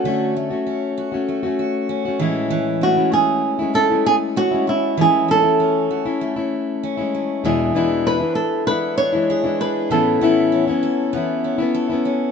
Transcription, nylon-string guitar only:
\new Staff \with { instrumentName = "Nylon-string guitar" } { \time 4/4 \key a \major \tempo 4 = 98 fis'8 r2. r8 | r8 fis'8 gis'4 a'8 gis'8 fis'8 e'8 | gis'8 a'2. r8 | gis'4 b'8 a'8 b'8 cis''4 b'8 |
a'2.~ a'8 r8 | }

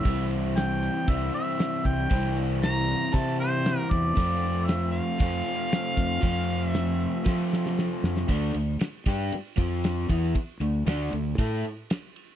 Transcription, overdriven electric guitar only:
\new Staff \with { instrumentName = "Overdriven electric guitar" } { \time 4/4 \key d \minor \tempo 4 = 116 <c e g c' e'>2 <c e g c' e'>2 | <c e g c' e'>2 <c e g c' e'>2 | <f a c' f'>2 <f a c' f'>2 | <f a c' f'>2 <f a c' f'>2 |
<d a d'>8 <d a>8 r8 <g d' g'>8 r8 <f c' f'>4 <e b e'>8 | r8 <d a>8 <d a d'>8 <d a>8 <a e' a'>8 r4. | }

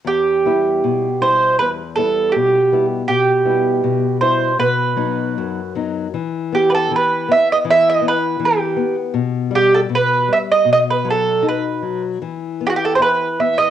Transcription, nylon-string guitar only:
\new Staff \with { instrumentName = "Nylon-string guitar" } { \clef bass \time 2/4 \key e \minor \tempo 4 = 79 e,8 <g b e'>8 b,8 <g e'>8 | e,8 <g b e'>8 b,8 <g b e'>8 | b,8 <g b e'>8 b,8 <g e'>8 | b,8 <fis b dis'>8 fis,8 <fis b dis'>8 |
e8 b8 e8 b8 | e8 b8 e8 b8 | b,8 g8 b,8 g8 | b,8 fis8 dis'8 fis8 |
e8 b8 e'8 b8 | }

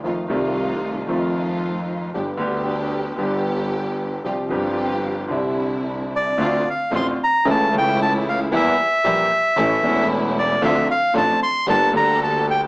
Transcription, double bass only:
\new Staff \with { instrumentName = "Double bass" } { \clef bass \time 4/4 \key f \major \tempo 4 = 114 f,8 c,4. f,2 | g,,8 d,4. g,,2 | c,8 g,,4. c,2 | \key d \minor d,8 r8 a,,8 r8 cis,8 cis,4. |
e,8 r8 bes,,8 r8 a,,8 e,,4. | d,8 r8 a,,8 r8 g,,8 d,4. | }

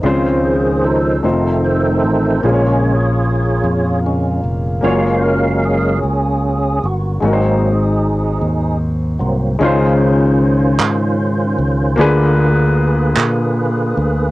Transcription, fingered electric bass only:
\new Staff \with { instrumentName = "Fingered electric bass" } { \clef bass \time 6/8 \key des \major \tempo 4. = 50 des,4. f,,4 a,,8 | bes,,4. f,4 f,,8 | ges,,4. des,4 g,,8 | aes,,4. ees,4 c,8 |
des,4. aes,4 des,8 | d,4. bes,4 d,8 | }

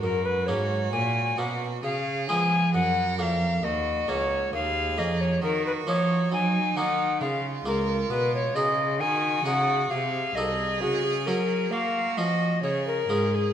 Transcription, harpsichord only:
<<
  \new Staff \with { instrumentName = "Harpsichord" } { \time 3/4 \key ges \major \tempo 4 = 67 r8 <bes des'>4 <bes des'>8 r8 <aes ces' des'>8 | r8 <bes des'>8 r8 <bes des'>8 r8 <bes des'>8 | \key fis \major r8 <ais dis'>4 <ais dis'>8 r8 <ais eis'>8 | r8 <dis' gis'>4 <dis' gis'>8 r8 <ees' a'>8 |
r8 <cis' fis'>4 <cis' fis'>8 r8 <gis cis' eis'>8 | }
  \new Staff \with { instrumentName = "Harpsichord" } { \clef bass \time 3/4 \key ges \major ges,8 aes,8 bes,8 ces8 des8 f8 | ges,8 f,8 ees,8 des,8 ees,8 f,8 | \key fis \major dis8 eis8 fis8 dis8 cis8 cis,8 | b,8 cis8 dis8 cis8 c8 c,8 |
cis8 fis8 ais8 eis8 cis8 gis,8 | }
>>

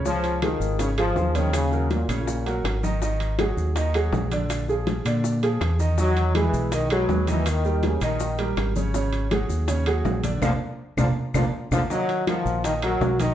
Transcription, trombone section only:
\new Staff \with { instrumentName = "Trombone section" } { \clef bass \time 4/4 \key ees \minor \tempo 4 = 162 f4 ees4 des8 f4 ees8 | des4 bes,8 bes,4. r4 | r1 | r1 |
ges4 e4 dis8 ges4 e8 | ees4 des8 ees4. r4 | r1 | <bes, d f>8 r4 <bes, d f>8 r8 <bes, d f>8 r8 <bes, d f>8 |
ges4 f4 ees8 ges4 ees8 | }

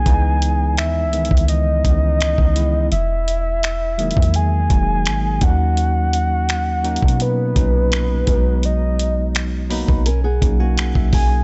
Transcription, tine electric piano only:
<<
  \new Staff \with { instrumentName = "Tine electric piano" } { \time 4/4 \key cis \dorian \tempo 4 = 84 r1 | r1 | r1 | r4. b''8 gis''16 fis''8 gis''16 fis''16 e''8. | }
  \new Staff \with { instrumentName = "Tine electric piano" } { \time 4/4 \key cis \dorian <e gis b dis'>4 r8 <dis e gis b>8 r8 <e gis b cis'>8 r8 <e gis b e'>8 | r4. <dis fis gis ais>8 r8 <fis gis ais dis'>4 <fis ais cis' dis'>8~ | <fis ais cis' dis'>4 r8 <fis ais cis' dis'>8 r8 <ais, fis cis' dis'>8 r8 <fis gis b cis' dis'>8~ | <fis gis b cis' dis'>4 r8 <fis ais b dis'>8 r8 <fis ais cis' dis'>4 r8 | }
>>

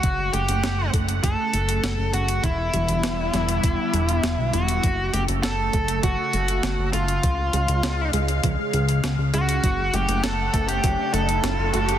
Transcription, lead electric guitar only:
\new Staff \with { instrumentName = "Lead electric guitar" } { \time 4/4 \key fis \phrygian \tempo 4 = 100 fis'8 g'4 r8 a'4. fis'8 | e'2.~ e'8 fis'8~ | fis'8 g'8 a'4 fis'4. eis'8~ | eis'4. r2 fis'8~ |
fis'8 g'8 a'8. g'8. a'4 a'8 | }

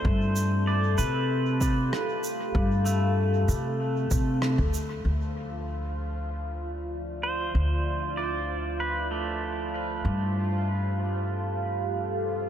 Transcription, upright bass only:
\new Staff \with { instrumentName = "Upright bass" } { \clef bass \time 4/4 \key d \dorian \tempo 4 = 96 g,4. c4. r4 | g,4. c4 c8. d,8. | d,1 | d,1 |
g,1 | }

